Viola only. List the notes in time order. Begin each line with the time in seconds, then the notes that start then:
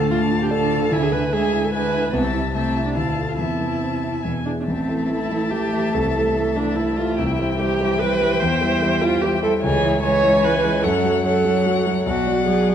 Already playing: A4
0.11 F4
0.42 G4
0.51 A4
0.92 E4
1.03 G#4
1.12 B4
1.33 G#4
1.64 A4
1.73 B4
2.13 B3
2.24 C4
2.33 E4
2.53 C4
2.85 D4
2.96 E4
3.29 F4
3.38 E4
4.45 D4
4.60 D4
4.67 C4
5.09 E4
5.51 G4
5.94 A4
6.56 D4
6.76 E4
6.97 F4
7.18 E4
7.59 G4
7.99 B4
8.40 C5
9.02 F4
9.22 G4
9.43 A4
9.64 G#4
10.04 C#5
10.45 B4
10.83 A4
11.24 A4
12.06 F#4
12.47 G#4